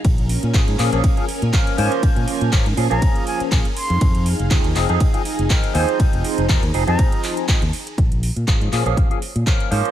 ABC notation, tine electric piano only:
X:1
M:4/4
L:1/16
Q:"Swing 16ths" 1/4=121
K:Bbm
V:1 name="Tine electric piano"
z4 [F,B,DA]2 [F,B,DA] [F,B,DA]2 [F,B,DA] z2 [F,B,DB]2 [F,B,Dc]2- | [F,B,Dc]4 [F,B,DB] z [F,B,DA] [F,B,DA]4- [F,B,DA] [F,B,DA] z3 | z4 [F,CEA]2 [F,CEA] [F,CEA]2 [F,CEA] z2 [F,CEB]2 [F,CEc]2- | [F,CEc]4 [F,CEB] z [F,CEA] [F,CEA]4- [F,CEA] [F,CEA] z3 |
z4 [F,B,DA]2 [F,B,DA] [F,B,DA]2 [F,B,DA] z2 [F,B,DB]2 [F,B,Dc]2 |]